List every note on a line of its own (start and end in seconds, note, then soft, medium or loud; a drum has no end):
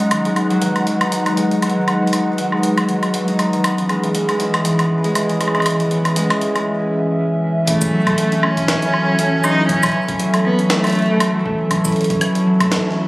0.00 0.16 F#3 medium
0.00 3.64 G#3 medium
0.00 0.41 C#4 medium
0.00 1.00 D#4 medium
0.00 3.64 D#4 medium
0.00 6.67 F#5 medium
0.00 closed hi-hat soft
0.11 0.60 D#3 medium
0.11 closed hi-hat medium
0.11 high woodblock medium
0.25 0.67 G#3 medium
0.25 4.63 F#5 medium
0.25 closed hi-hat soft
0.35 5.27 B4 medium
0.35 closed hi-hat medium
0.35 high woodblock soft
0.50 0.67 F#3 loud
0.50 closed hi-hat soft
0.62 1.25 D#3 medium
0.62 closed hi-hat medium
0.76 closed hi-hat soft
0.76 high woodblock soft
0.87 1.30 F#3 medium
0.87 closed hi-hat medium
1.01 2.12 D#4 medium
1.01 closed hi-hat soft
1.01 high woodblock medium
1.12 closed hi-hat medium
1.26 1.75 D#3 medium
1.26 closed hi-hat soft
1.26 high woodblock soft
1.37 1.80 G#3 medium
1.37 closed hi-hat medium
1.51 closed hi-hat soft
1.62 1.80 F#3 medium
1.62 closed hi-hat medium
1.62 high woodblock medium
1.70 closed hi-hat soft
1.77 2.37 D#3 medium
1.88 closed hi-hat soft
1.88 high woodblock medium
2.02 2.43 F#3 medium
2.07 closed hi-hat soft
2.13 3.27 D#4 medium
2.13 closed hi-hat medium
2.13 high woodblock soft
2.38 2.87 D#3 medium
2.38 closed hi-hat medium
2.52 2.93 G#3 medium
2.52 high woodblock soft
2.63 closed hi-hat medium
2.77 2.93 F#3 loud
2.77 closed hi-hat soft
2.77 high woodblock medium
2.89 3.52 D#3 medium
2.89 closed hi-hat medium
3.03 closed hi-hat soft
3.03 high woodblock medium
3.14 3.57 F#3 medium
3.14 closed hi-hat medium
3.28 4.10 D#4 medium
3.28 closed hi-hat soft
3.39 closed hi-hat medium
3.39 high woodblock soft
3.53 3.69 D#3 medium
3.53 closed hi-hat soft
3.64 7.67 E3 medium
3.64 4.79 B3 medium
3.64 closed hi-hat medium
3.64 high woodblock medium
3.69 13.08 C#4 medium
3.78 closed hi-hat soft
3.89 4.28 G#3 medium
3.89 closed hi-hat soft
3.89 high woodblock medium
3.95 7.67 G#4 medium
4.04 4.64 E3 medium
4.04 closed hi-hat soft
4.15 closed hi-hat medium
4.28 5.03 G#3 medium
4.28 13.08 E5 medium
4.28 closed hi-hat soft
4.28 high woodblock medium
4.40 5.54 E4 medium
4.40 closed hi-hat medium
4.54 closed hi-hat soft
4.54 high woodblock medium
4.65 5.14 E3 medium
4.65 closed hi-hat medium
4.79 5.91 B3 medium
4.79 closed hi-hat soft
4.79 high woodblock medium
5.04 5.39 G#3 loud
5.04 closed hi-hat soft
5.15 5.79 E3 medium
5.15 closed hi-hat medium
5.15 high woodblock medium
5.29 closed hi-hat soft
5.41 6.15 G#3 medium
5.41 closed hi-hat medium
5.41 high woodblock soft
5.48 high woodblock soft
5.55 8.16 E4 medium
5.55 closed hi-hat soft
5.55 high woodblock medium
5.60 closed hi-hat soft
5.60 high woodblock medium
5.66 closed hi-hat medium
5.66 high woodblock medium
5.80 6.29 E3 medium
5.80 closed hi-hat soft
5.91 9.01 B3 medium
5.91 closed hi-hat soft
6.05 closed hi-hat soft
6.05 high woodblock medium
6.16 6.54 G#3 loud
6.16 closed hi-hat medium
6.30 7.66 E3 medium
6.30 closed hi-hat soft
6.30 high woodblock medium
6.41 closed hi-hat medium
6.55 7.72 G#3 medium
6.55 closed hi-hat soft
6.55 high woodblock soft
7.67 8.81 E3 medium
7.67 13.08 F#3 medium
7.67 8.45 A3 loud
7.67 kick medium
7.67 closed hi-hat medium
7.82 kick loud
7.82 closed hi-hat soft
7.82 shaker medium
7.93 9.06 F#3 medium
8.07 9.18 A3 loud
8.07 kick loud
8.07 closed hi-hat soft
8.07 high woodblock medium
8.18 closed hi-hat medium
8.32 8.68 C#4 medium
8.32 13.08 A4 medium
8.32 closed hi-hat soft
8.43 9.45 C#4 loud
8.43 9.58 E4 medium
8.43 high woodblock medium
8.57 kick medium
8.57 closed hi-hat soft
8.68 9.44 C#4 medium
8.68 kick loud
8.68 snare loud
8.68 closed hi-hat medium
8.82 9.93 E3 medium
8.82 closed hi-hat medium
8.94 high woodblock medium
9.08 10.18 F#3 medium
9.19 10.33 A3 loud
9.19 closed hi-hat medium
9.44 9.83 C#4 medium
9.44 9.69 D#4 loud
9.44 high woodblock medium
9.44 shaker medium
9.58 10.70 E4 medium
9.69 10.16 C#4 loud
9.69 kick medium
9.69 closed hi-hat medium
9.83 10.58 C#4 medium
9.83 kick loud
9.83 closed hi-hat soft
9.83 high woodblock medium
9.83 shaker medium
9.86 closed hi-hat soft
9.92 11.08 E3 medium
9.92 closed hi-hat soft
10.08 kick loud
10.08 closed hi-hat soft
10.20 11.33 F#3 medium
10.20 closed hi-hat medium
10.34 11.45 A3 loud
10.34 closed hi-hat soft
10.34 high woodblock medium
10.45 10.64 B3 loud
10.59 10.95 C#4 medium
10.59 closed hi-hat soft
10.64 10.71 B3 medium
10.70 11.46 A3 loud
10.70 11.85 E4 medium
10.70 snare loud
10.70 closed hi-hat medium
10.84 closed hi-hat medium
10.84 high woodblock medium
10.87 closed hi-hat soft
10.90 closed hi-hat soft
10.92 closed hi-hat soft
10.95 11.70 C#4 medium
10.95 closed hi-hat soft
10.99 closed hi-hat soft
11.02 closed hi-hat soft
11.06 12.20 E3 medium
11.06 closed hi-hat soft
11.20 closed hi-hat medium
11.20 high woodblock medium
11.35 12.45 F#3 medium
11.46 12.60 A3 loud
11.46 kick loud
11.71 12.10 C#4 medium
11.71 kick medium
11.71 closed hi-hat medium
11.71 high woodblock medium
11.85 12.96 E4 medium
11.85 kick loud
11.85 closed hi-hat soft
11.85 shaker medium
11.88 closed hi-hat soft
11.92 closed hi-hat soft
11.96 closed hi-hat soft
12.01 closed hi-hat soft
12.04 closed hi-hat soft
12.10 12.85 C#4 medium
12.10 kick loud
12.10 closed hi-hat soft
12.21 13.08 E3 medium
12.21 closed hi-hat medium
12.21 high woodblock medium
12.35 closed hi-hat soft
12.46 13.08 F#3 medium
12.60 13.08 A3 loud
12.60 kick medium
12.60 closed hi-hat medium
12.60 high woodblock medium
12.72 kick loud
12.72 snare loud
12.72 closed hi-hat medium
12.86 13.08 C#4 medium
12.97 13.08 E4 medium